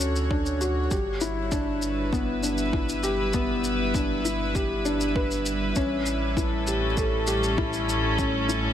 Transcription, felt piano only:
Already playing: C#4 D4 F#4 A4
0.31 D4
0.61 F#4
0.91 G4
1.21 E4
1.52 D4
2.13 B3
2.43 D4
2.73 E4
3.03 G4
3.34 B3
3.95 D4
4.25 E4
4.55 G4
4.85 D4
5.16 B4
5.76 C#4
6.37 E4
6.67 G4
6.97 A4
7.27 G4
7.58 E4
8.18 C#4
8.49 E4

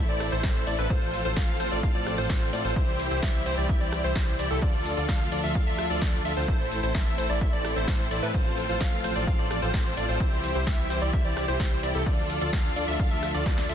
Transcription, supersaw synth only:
0.09 E4 A4 D5
0.32 E4 A4 C5
0.44 E4 A4 C5
0.67 E4 A4 D5
0.78 E4 A4 B4
0.90 F4 A4 C5
1.25 F4 A4 C5
1.37 F4 A4 F5
1.60 F4 A4 C5
1.71 F4 A4 D5
1.83 F4 A4 F5
1.95 F4 A4 D5
2.18 F4 A4 C5
2.30 F4 A4 C5
2.53 F4 A4 D5
2.65 F4 A4 C5
2.76 E4 G4 C5
3.11 E4 G4 C5
3.23 E4 G4 E5
3.46 E4 G4 C5
3.57 E4 G4 D5
3.69 E4 G4 E5
3.81 E4 G4 D5
4.04 E4 G4 C5
4.16 E4 G4 C5
4.39 E4 G4 D5
4.50 E4 G4 A4
4.62 F4 A4 D5
4.97 F4 A4 D5
5.09 F4 A4 F5
5.32 F4 A4 D5
5.44 F4 A4 E5
5.55 F4 A4 F5
5.67 F4 A4 E5
5.90 F4 A4 D5
6.02 F4 A4 D5
6.25 F4 A4 E5
6.37 F4 A4 C5
6.48 E4 A4 C5
6.83 E4 A4 C5
6.95 E4 A4 E5
7.18 E4 A4 C5
7.30 E4 A4 D5
7.41 E4 A4 E5
7.53 E4 A4 D5
7.76 E4 A4 C5
7.88 E4 A4 C5
8.11 E4 A4 D5
8.23 E4 A4 B4
8.34 F4 A4 C5
8.69 F4 A4 C5
8.81 F4 A4 F5
9.04 F4 A4 C5
9.16 F4 A4 D5
9.27 F4 A4 F5
9.39 F4 A4 D5
9.62 F4 A4 C5
9.74 F4 A4 C5
9.97 F4 A4 D5
10.09 F4 A4 C5
10.20 E4 G4 C5
10.55 E4 G4 C5
10.67 E4 G4 E5
10.90 E4 G4 C5
11.02 E4 G4 D5
11.13 E4 G4 E5
11.25 E4 G4 D5
11.48 E4 G4 C5
11.60 E4 G4 C5
11.83 E4 G4 D5
11.95 E4 G4 A4
12.06 F4 A4 D5
12.41 F4 A4 D5
12.53 F4 A4 F5
12.76 F4 A4 D5
12.88 F4 A4 E5
12.99 F4 A4 F5
13.11 F4 A4 E5
13.34 F4 A4 D5
13.46 F4 A4 D5
13.69 F4 A4 E5

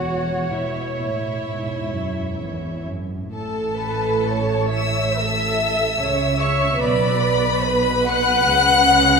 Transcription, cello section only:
Already playing: E2
0.57 B2
1.02 A2
1.48 G#2
1.95 F#2
2.41 E2
2.88 F#2
3.34 A2
5.99 C#3
6.80 B2
8.49 C#3

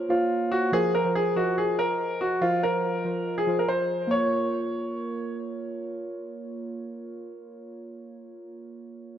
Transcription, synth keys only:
Already playing: A#3 F4 C5 C#5
0.09 A#3 F4 C5 C#5
0.72 F3 F4 A#4 C5
1.04 F3 F4 A#4 C5
1.35 F3 F4 A#4 D#5
2.41 F3 F4 A#4 C5
3.05 F3 F4 A#4 C5
3.47 F3 F4 A#4 C5
4.07 A#3 F4
4.12 A#4 C#5

